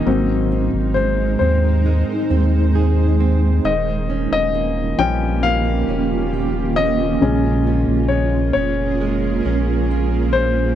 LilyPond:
<<
  \new Staff \with { instrumentName = "Grand piano" } { \time 4/4 \key bes \minor \tempo 4 = 67 ees''4 c''8 c''4 r4. | ees''8. ees''8. g''8 f''4. ees''8~ | ees''4 des''8 des''4 r4 c''8 | }
  \new Staff \with { instrumentName = "Grand piano" } { \clef bass \time 4/4 \key bes \minor <ges bes c'>8 r2. r8 | r4. <f g des'>2~ <f g des'>8 | <des aes des'>1 | }
  \new Staff \with { instrumentName = "Ambient pad" } { \time 4/4 \key bes \minor << { bes'2 aes'2 | <des' f'>1 | <aes' bes'>1 | } \\ { <aes ees' c''>1 | <ees bes g'>1 | <bes des'>1 | } >> }
  \new Staff \with { instrumentName = "Steel-string acoustic guitar" } { \time 4/4 \key bes \minor aes,8 c'8 aes8 c'8 aes8 c'8 aes'8 c'8 | ees8 des'8 bes8 des'8 bes8 des'8 g'8 des'8 | bes,8 des'8 aes8 des'8 aes8 des'8 f'8 des'8 | }
  \new Staff \with { instrumentName = "Sub bass" } { \clef bass \time 4/4 \key bes \minor aes,,8. aes,,8. ees,8. r16 ees,4. | ees,,8. ees,,8. bes,,4 ees,,4. | bes,,8. bes,,8. f,,4 bes,,4. | }
>>